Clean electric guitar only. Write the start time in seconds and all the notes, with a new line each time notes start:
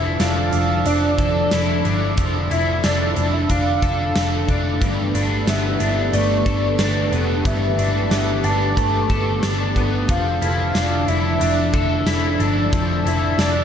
Already playing: F3 E4
0.20 D4
0.86 D4
1.19 A4
1.52 E4
1.85 D4
2.18 F3
2.51 E4
2.84 D4
3.50 D4
3.83 A4
4.49 D4
4.82 G2
5.15 D4
5.47 B3
5.80 D4
6.13 A3
6.46 A4
6.79 D4
7.12 B3
7.45 G2
7.78 D4
8.11 B3
8.44 D4
8.77 A3
9.10 A4
9.43 D4
9.76 B3
10.09 F3
10.42 E4
10.75 D4
11.08 E4
11.41 D4
11.74 A4
12.07 E4
12.39 D4
12.73 F3
13.05 E4
13.38 D4